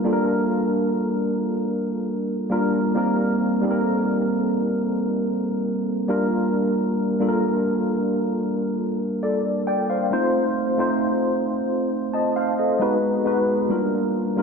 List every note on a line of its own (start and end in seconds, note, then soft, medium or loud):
0.00 0.04 G3 medium
0.00 1.52 G3 medium
0.00 0.04 A#3 medium
0.00 0.05 D4 medium
0.00 0.05 F4 medium
0.00 0.13 A#4 loud
0.04 1.52 A#3 medium
0.04 1.52 D4 medium
0.04 1.53 F4 medium
0.04 0.12 A4 medium
0.13 1.56 A#4 medium
2.50 2.87 G3 medium
2.50 2.87 A#3 medium
2.50 2.88 D4 medium
2.50 2.88 F4 medium
2.50 2.88 A#4 loud
2.95 3.51 G3 medium
2.95 3.51 A#3 medium
2.95 3.51 C4 medium
2.95 3.51 D#4 medium
2.95 3.52 A#4 medium
3.62 5.10 G3 medium
3.62 5.10 A#3 medium
3.62 5.11 C4 medium
3.62 5.11 D#4 medium
3.62 3.70 A4 medium
3.71 5.14 A#4 loud
6.08 7.01 G3 medium
6.08 7.01 A#3 medium
6.08 7.01 D4 medium
6.08 7.02 F4 medium
6.08 7.02 A#4 loud
7.20 8.68 G3 medium
7.20 8.68 A#3 medium
7.20 8.69 D4 medium
7.20 8.69 F4 medium
7.20 7.28 A4 medium
7.29 8.72 A#4 medium
9.23 9.65 A4 medium
9.23 9.65 D5 medium
9.67 9.89 D5 medium
9.67 9.88 G5 medium
9.90 10.12 C5 medium
9.90 10.32 F5 medium
10.11 10.67 A3 medium
10.11 10.67 C4 medium
10.11 10.67 D#4 medium
10.11 10.68 F4 medium
10.11 10.68 C5 loud
10.78 12.26 A3 medium
10.78 12.27 C4 medium
10.78 12.27 D#4 medium
10.78 12.27 F4 medium
10.78 11.47 C5 loud
12.14 12.35 D#5 medium
12.14 12.35 A5 medium
12.36 12.58 C5 medium
12.36 12.57 F5 medium
12.59 13.01 A4 medium
12.59 13.01 D#5 medium
12.79 13.17 G#3 loud
12.79 13.17 B3 medium
12.79 13.18 D#4 medium
12.79 13.18 F#4 medium
12.79 13.18 B4 loud
13.25 13.62 G#3 medium
13.25 13.62 B3 medium
13.25 13.63 D#4 medium
13.25 13.63 F#4 medium
13.25 13.63 B4 loud
13.69 14.25 G3 medium
13.69 14.25 A#3 medium
13.69 14.26 D4 medium
13.69 14.26 F4 medium
13.69 14.26 A#4 loud
14.36 14.43 G3 medium
14.36 14.43 A#3 medium
14.36 14.43 D4 medium
14.36 14.43 F4 medium
14.36 14.43 A#4 medium